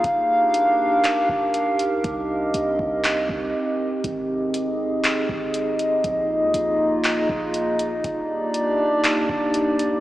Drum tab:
HH |x-x-x-xx|x-x-x---|x-x-x-xx|x-x-x-xx|
CP |----x---|----x---|----x---|----x---|
BD |o----o--|o--o-o--|o----o--|o----o--|

HH |x-x-x-xx|
CP |----x---|
BD |o----o--|